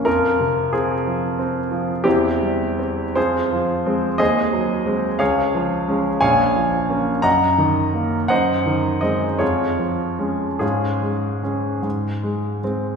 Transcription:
X:1
M:6/8
L:1/8
Q:3/8=58
K:Fphr
V:1 name="Grand piano"
[FB]2 [CFA]4 | [C=E=G]3 [FAc]3 | [K:Db] [Ace]3 [Adf]3 | [dfa]3 [egb]3 |
[ceg]2 e [FAd]3 | [DFA]4- [DFA] z |]
V:2 name="Grand piano" clef=bass
F,, C,2 F, C F, | =E,, =G, C F,, F, [A,C] | [K:Db] E,, G, [A,C] D,, F, [A,D] | B,,, F, [B,D] G,, E, B, |
G,, E, [A,C] F,, F, [A,D] | A,, A, [A,D] A,, A, [A,C] |]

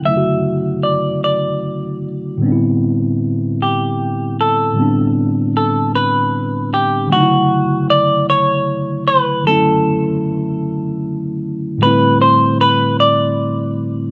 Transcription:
X:1
M:6/8
L:1/8
Q:3/8=51
K:Ador
V:1 name="Clean electric guitar"
e2 d d2 z | z3 G2 A- | A2 A B2 G | F2 d ^c2 B |
A4- A z | B c B d3 |]
V:2 name="Tine electric piano"
[^C,D,F,A,EF]6 | [A,,D,G,B,CDE]6 | [A,,D,G,B,CD]6 | [^C,D,F,A,^DE]6 |
[D,F,A,^CE]6 | [A,,D,G,A,CE]6 |]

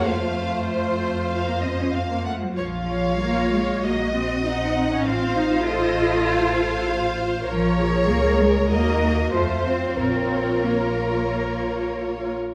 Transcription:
X:1
M:4/4
L:1/16
Q:1/4=96
K:Bbm
V:1 name="Violin section"
f4 c4 f2 e2 f2 g2 | f8 e4 g4 | f4 e4 f8 | B12 c4 |
d12- d2 z2 |]
V:2 name="Violin section"
c12- c2 z2 | d2 d6 e8 | c4 c4 c2 c6 | d8 e4 c4 |
B12- B2 z2 |]
V:3 name="Viola section"
F12- F2 z2 | F4 F4 G4 E4 | F4 =A2 A6 F4 | F2 A6 G4 F4 |
F12- F2 z2 |]
V:4 name="Cello section"
=A,8- A, B, C D C B, A, G, | F,4 B,2 A,2 B,2 C2 C3 D | C2 E2 F8- F2 z2 | F,4 B,2 A,2 B,2 B,2 =A,2 C2 |
C4 B,8- B,2 z2 |]
V:5 name="Double bass section" clef=bass
F,,12- F,,2 z2 | B,,,8 B,,,8 | =A,,,16 | B,,,4 D,,4 E,,4 F,,4 |
B,,,12- B,,,2 z2 |]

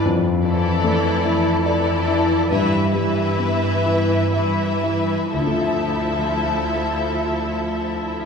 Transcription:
X:1
M:6/8
L:1/8
Q:3/8=43
K:Ddor
V:1 name="Violin section"
z [Ad]3 [Ad]2 | [Be] [Be]3 [Be]2 | [Ae]6 |]
V:2 name="Grand piano"
F,, F, A, E d E | G,, G, B, E e E | [D,,D,A,Fe]6 |]
V:3 name="Viola section"
z [E,E]3 [E,E]2 | [E,E] [E,E]3 [E,E]2 | [F,E]6 |]
V:4 name="Cello section" clef=bass
F,,3 F,,3 | G,,3 G,,3 | D,,6 |]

